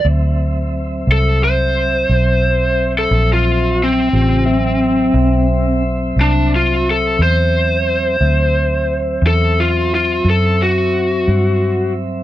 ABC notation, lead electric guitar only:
X:1
M:12/8
L:1/16
Q:3/8=59
K:Dmix
V:1 name="Lead electric guitar"
z6 A2 c8- c A2 =F3 C2- | C8- C2 z2 D2 =F2 A2 c6- | c6 A2 =F2 F2 A2 ^F8 z2 |]